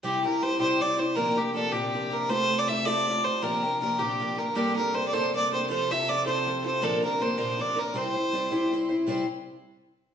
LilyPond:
<<
  \new Staff \with { instrumentName = "Fiddle" } { \time 6/8 \key c \mixolydian \tempo 4. = 106 g'8 bes'8 c''8 c''8 d''8 c''8 | bes'8 g'8 a'8 g'4 bes'8 | c''8. d''16 e''8 d''4 c''8 | bes'4 bes'8 g'4 bes'8 |
g'8 bes'8 c''16. d''32 c''8 d''8 c''8 | c''8 e''8 d''8 c''4 c''8 | a'8 bes'8 c''8 c''8 d''8 bes'8 | c''2 r4 |
r2. | }
  \new Staff \with { instrumentName = "Twelve-string acoustic guitar" } { \time 6/8 \key c \mixolydian <c g c' e' g'>8 <c' e' g'>8 <g c' e' g'>8 <c g c' e' g'>8 <g c' e' g'>8 <c' e' g'>8 | <bes, d f bes d' g'>8 <f bes d' g'>8 <f bes d' g'>8 <bes, d f bes d' g'>8 <f bes d' g'>8 <f bes d' g'>8 | <a c' f' a'>8 <c' f' a'>8 <a c' f' a'>8 <a c' f' a'>8 <a c' f' a'>8 <c' f' a'>8 | <bes, d f bes d' g'>8 <f bes d' g'>8 <f bes d' g'>8 <bes, d f bes d' g'>8 <f bes d' g'>8 <f bes d' g'>8 |
<g, d g bes d' a'>8 <g bes d' a'>8 <g bes d' a'>8 <g, d g bes d' a'>8 <g bes d' a'>8 <g bes d' a'>8 | <f c' f' a'>8 <c' f' a'>8 <f c' f' a'>8 <f c' f' a'>8 <f c' f' a'>8 <c' f' a'>8 | <bes, d f bes d' bes'>8 <f bes d' bes'>8 <f bes d' bes'>8 <bes, d f bes d' bes'>8 <f bes d' bes'>8 <f bes d' bes'>8 | <c g c' e' c''>8 <c' e' c''>8 <g c' e' c''>8 <c g c' e' c''>8 <g c' e' c''>8 <c' e' c''>8 |
<c g c' e' c''>8 r2 r8 | }
  \new Staff \with { instrumentName = "String section" } { \clef bass \time 6/8 \key c \mixolydian c2.~ | c2.~ | c2.~ | c2. |
c2.~ | c2.~ | c2.~ | c2. |
r2. | }
>>